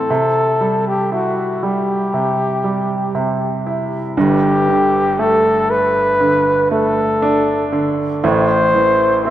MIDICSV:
0, 0, Header, 1, 3, 480
1, 0, Start_track
1, 0, Tempo, 1016949
1, 46, Time_signature, 4, 2, 24, 8
1, 4391, End_track
2, 0, Start_track
2, 0, Title_t, "Flugelhorn"
2, 0, Program_c, 0, 56
2, 0, Note_on_c, 0, 69, 84
2, 407, Note_off_c, 0, 69, 0
2, 411, Note_on_c, 0, 67, 75
2, 520, Note_off_c, 0, 67, 0
2, 533, Note_on_c, 0, 66, 67
2, 772, Note_on_c, 0, 67, 70
2, 779, Note_off_c, 0, 66, 0
2, 1729, Note_off_c, 0, 67, 0
2, 1975, Note_on_c, 0, 67, 86
2, 2455, Note_on_c, 0, 69, 88
2, 2462, Note_off_c, 0, 67, 0
2, 2695, Note_on_c, 0, 71, 90
2, 2702, Note_off_c, 0, 69, 0
2, 3167, Note_off_c, 0, 71, 0
2, 3169, Note_on_c, 0, 69, 85
2, 3629, Note_off_c, 0, 69, 0
2, 3892, Note_on_c, 0, 72, 104
2, 4350, Note_off_c, 0, 72, 0
2, 4375, Note_on_c, 0, 76, 97
2, 4391, Note_off_c, 0, 76, 0
2, 4391, End_track
3, 0, Start_track
3, 0, Title_t, "Grand piano"
3, 0, Program_c, 1, 0
3, 0, Control_c, 1, 64, 127
3, 0, Note_on_c, 1, 45, 48
3, 0, Note_on_c, 1, 52, 48
3, 0, Note_on_c, 1, 60, 52
3, 48, Note_on_c, 1, 48, 60
3, 52, Control_c, 1, 64, 0
3, 54, Note_off_c, 1, 45, 0
3, 54, Note_off_c, 1, 60, 0
3, 55, Note_off_c, 1, 52, 0
3, 128, Control_c, 1, 64, 127
3, 287, Note_on_c, 1, 55, 43
3, 528, Note_on_c, 1, 64, 46
3, 762, Note_off_c, 1, 55, 0
3, 769, Note_on_c, 1, 55, 49
3, 1002, Note_off_c, 1, 48, 0
3, 1009, Note_on_c, 1, 48, 46
3, 1240, Note_off_c, 1, 55, 0
3, 1247, Note_on_c, 1, 55, 41
3, 1468, Note_off_c, 1, 64, 0
3, 1479, Note_off_c, 1, 48, 0
3, 1486, Note_on_c, 1, 48, 49
3, 1730, Note_on_c, 1, 64, 46
3, 1948, Note_off_c, 1, 55, 0
3, 1952, Note_off_c, 1, 48, 0
3, 1961, Note_off_c, 1, 64, 0
3, 1969, Note_on_c, 1, 31, 57
3, 1970, Note_on_c, 1, 43, 67
3, 1972, Control_c, 1, 64, 0
3, 2053, Control_c, 1, 64, 127
3, 2212, Note_on_c, 1, 50, 50
3, 2450, Note_on_c, 1, 57, 52
3, 2920, Note_off_c, 1, 50, 0
3, 2927, Note_on_c, 1, 50, 54
3, 3162, Note_off_c, 1, 57, 0
3, 3169, Note_on_c, 1, 57, 50
3, 3409, Note_on_c, 1, 62, 62
3, 3639, Note_off_c, 1, 50, 0
3, 3646, Note_on_c, 1, 50, 62
3, 3869, Note_off_c, 1, 31, 0
3, 3869, Note_off_c, 1, 43, 0
3, 3869, Note_off_c, 1, 57, 0
3, 3873, Note_off_c, 1, 62, 0
3, 3879, Note_off_c, 1, 50, 0
3, 3888, Note_on_c, 1, 45, 69
3, 3889, Note_on_c, 1, 33, 60
3, 3891, Control_c, 1, 64, 0
3, 3985, Control_c, 1, 64, 127
3, 4129, Note_on_c, 1, 52, 47
3, 4366, Note_on_c, 1, 60, 53
3, 4391, Note_off_c, 1, 33, 0
3, 4391, Note_off_c, 1, 45, 0
3, 4391, Note_off_c, 1, 52, 0
3, 4391, Note_off_c, 1, 60, 0
3, 4391, End_track
0, 0, End_of_file